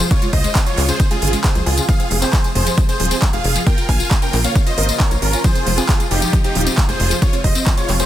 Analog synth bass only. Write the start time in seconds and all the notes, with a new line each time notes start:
0.33 C#2
0.78 C#2
1.22 G#1
1.55 C#2
1.66 C#2
2.11 F1
2.55 F1
3.00 D#1
3.33 F1
3.44 F1
3.89 A#1
4.33 A#1
4.78 G#1
5.11 A#1
5.22 G#1
5.67 F1
6.11 F1
6.55 D#1
6.89 F1
7.00 F1
7.44 F1
7.89 F1